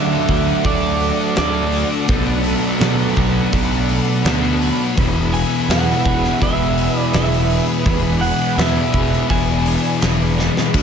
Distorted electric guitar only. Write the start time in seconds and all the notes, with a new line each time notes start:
Already playing: D3 A3 D4
0.64 D3 A3 D4
1.36 D3 A3 D4
2.08 B2 F#3 B3
2.80 B2 F#3 B3
3.52 B2 F#3 B3
4.23 B2 F#3 B3
4.96 E2 B2 E3
5.69 E2 B2 E3
6.40 E2 B2 E3
7.13 E2 B2 E3
7.85 E2 B2 E3
8.57 E2 B2 E3
9.29 E2 B2 E3
10.02 E2 B2 E3
10.74 D3 A3 D4